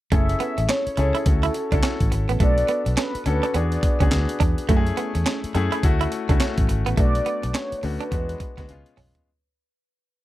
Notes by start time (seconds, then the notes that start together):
0.12 F#1 A3 C#4 E4 G#4 A4 E5, kick, closed hi-hat
0.29 closed hi-hat
0.40 B3, closed hi-hat
0.58 A1, muted clean electric guitar stroke, closed hi-hat
0.69 C#4 C#5, snare, clap, closed hi-hat
0.87 muted fingered electric bass stroke, closed hi-hat
0.97 C#2 C#4 E4 G#4 A4, muted clean electric guitar stroke, closed hi-hat
1.15 E4, closed hi-hat
1.26 D2 C#4 E4 F#4 A4, kick, closed hi-hat
1.43 E4, closed hi-hat
1.54 muted clean electric guitar stroke, closed hi-hat
1.72 C#2 C#4 D4 E4 F#4 A4, kick, closed hi-hat
1.83 C#4, snare, clap, closed hi-hat
2.00 A1, kick, closed hi-hat
2.12 G#1, muted clean electric guitar stroke, closed hi-hat
2.29 A1 B3, closed hi-hat
2.40 B1 A3 B3 D4 F#4 A4 D5, kick, closed hi-hat
2.58 closed hi-hat
2.68 B3, closed hi-hat
2.86 B1, muted clean electric guitar stroke, closed hi-hat
2.97 C#4 B4, snare, clap, closed hi-hat
3.15 muted fingered electric bass stroke, closed hi-hat
3.26 D2 C#4 D4 F#4 A4 B4, muted clean electric guitar stroke, closed hi-hat
3.43 D4, closed hi-hat
3.54 E2 B3 D4 F#4 G#4 D5, closed hi-hat
3.72 closed hi-hat
3.83 muted clean electric guitar stroke, kick, closed hi-hat
4.00 D2 B3 C#4 D4 F#4 G#4, kick, closed hi-hat
4.11 D2, snare, clap, closed hi-hat
4.29 closed hi-hat
4.40 E2 D4, kick, closed hi-hat
4.58 closed hi-hat
4.69 F#2 A3 C#4 E4 F#4, kick, closed hi-hat
4.77 G#4
4.87 closed hi-hat
4.97 B3, closed hi-hat
5.15 E2, muted clean electric guitar stroke, closed hi-hat
5.26 C#4, snare, clap, closed hi-hat
5.44 muted fingered electric bass stroke, closed hi-hat
5.55 F#2 A3 C#4 E4 G#4, muted clean electric guitar stroke, closed hi-hat
5.72 E4, closed hi-hat
5.83 D2 A3 C#4 E4 F#4, kick, closed hi-hat
6.01 E4, closed hi-hat
6.12 muted clean electric guitar stroke, closed hi-hat
6.29 C#2 A3 C#4 D4 E4 F#4, kick, closed hi-hat
6.40 C#4, snare, clap, closed hi-hat
6.58 A1, kick, closed hi-hat
6.69 G#1, muted clean electric guitar stroke, closed hi-hat
6.86 A1 B3, closed hi-hat
6.97 B1 A3 B3 D4 F#4 D5, kick, closed hi-hat
7.15 closed hi-hat
7.26 B3, closed hi-hat
7.43 B1, muted clean electric guitar stroke, closed hi-hat
7.54 C#4 C#5, snare, clap, closed hi-hat
7.72 muted fingered electric bass stroke, closed hi-hat
7.78 C#5
7.83 D2 A3 C#4 D4 F#4 B4, muted clean electric guitar stroke, open hi-hat
8.01 D4, closed hi-hat
8.12 E2 G#3 B3 D4 F#4, kick, closed hi-hat
8.29 closed hi-hat
8.40 muted clean electric guitar stroke, kick, closed hi-hat
8.57 D2 G#3 B3 D4 F#4, kick, snare, closed hi-hat
8.69 G#3 B3 C#4 F4, closed hi-hat, high tom
8.86 closed hi-hat
8.97 B1 C#4, mid tom, open hi-hat
9.15 closed hi-hat, floor tom